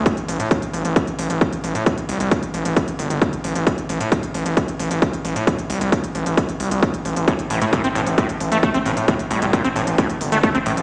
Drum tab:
HH |xxoxxxoxxxoxxxox|xxoxxxoxxxoxxxox|xxoxxxoxxxoxxxox|xxoxxxoxxxoxxxox|
BD |o---o---o---o---|o---o---o---o---|o---o---o---o---|o---o---o---o---|

HH |xxoxxxoxxxoxxxox|xxoxxxoxxxoxxxox|
BD |o---o---o---o---|o---o---o---o---|